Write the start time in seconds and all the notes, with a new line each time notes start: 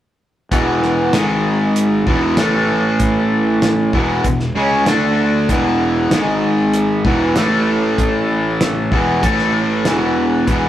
0.51 E1 E2 B2 E3, kick, closed hi-hat
0.83 snare
1.13 G#1 G#2 D#3 G#3, snare, closed hi-hat
1.76 closed hi-hat
2.07 E1 E2 B2 E3, kick
2.37 A1 A2 E3 A3, snare, closed hi-hat
3.00 kick, closed hi-hat
3.62 snare, closed hi-hat
3.93 E1 E2 B2 E3, kick
4.24 E1 E2 B2, kick, closed hi-hat
4.40 snare
4.55 C#2 C#3 G#3 C#4
4.85 D2 D3 A3 D4, snare, closed hi-hat
5.49 E1 E2 B2 E3, kick, closed hi-hat
6.11 G#1 G#2 D#3 G#3, snare, closed hi-hat
6.73 closed hi-hat
7.04 E1 E2 B2 E3, kick
7.35 A1 A2 E3 A3, snare, closed hi-hat
7.98 kick, closed hi-hat
8.61 snare, closed hi-hat
8.92 E1 E2 B2 E3, kick
9.22 A1 A2 E3 A3, kick, closed hi-hat
9.39 snare
9.85 E1 E2 B2 E3, snare, closed hi-hat
10.47 E1 E2 B2 E3 G#3 B3 G#4, kick, closed hi-hat